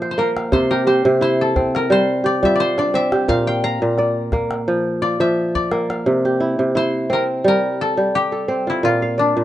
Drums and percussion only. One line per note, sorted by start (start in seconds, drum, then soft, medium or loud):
0.02 calabash click soft
0.37 calabash click soft
0.52 calabash thump medium
0.87 calabash click soft
1.56 calabash thump medium
1.56 calabash click soft
1.75 calabash click medium
1.91 calabash click soft
2.43 calabash thump soft
2.78 calabash click soft
3.12 calabash click soft
3.29 calabash thump medium
3.98 calabash click soft
4.32 calabash thump medium
4.32 calabash click soft
4.51 calabash click soft
5.55 calabash thump soft
5.72 calabash click soft
5.90 calabash click soft